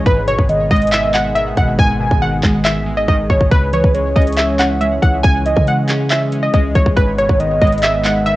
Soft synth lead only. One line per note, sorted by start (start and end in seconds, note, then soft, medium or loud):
0.28 0.48 C#5 medium
0.49 1.75 D#5 medium
2.00 2.21 G#5 medium
3.73 3.94 B4 medium
3.94 5.20 C#5 loud
5.46 5.66 D#5 medium
7.18 7.39 C#5 medium
7.40 8.36 D#5 loud